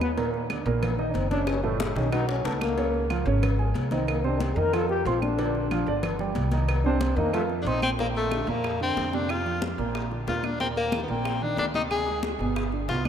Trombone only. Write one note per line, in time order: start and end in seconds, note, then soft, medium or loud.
0.01 0.11 B3 loud
0.98 1.15 D#4 loud
1.14 1.29 C4 medium
1.30 1.48 D4 loud
1.47 1.63 C#4 loud
1.63 1.81 E3 medium
1.79 1.95 G#3 medium
1.96 2.14 C#4 loud
2.12 2.28 D#4 loud
2.29 2.47 C#4 medium
2.45 2.61 B3 medium
2.62 3.07 A#3 medium
3.91 4.10 C4 medium
4.09 4.27 A#3 medium
4.25 4.42 D4 medium
4.41 4.59 G4 medium
4.57 4.75 A#4 loud
4.74 4.89 A4 loud
4.89 5.08 G4 loud
5.06 5.21 F4 loud
5.22 5.99 D4 loud
6.84 7.02 D4 loud
7.01 7.18 C4 medium
7.16 7.33 A#3 medium
7.33 7.43 A3 loud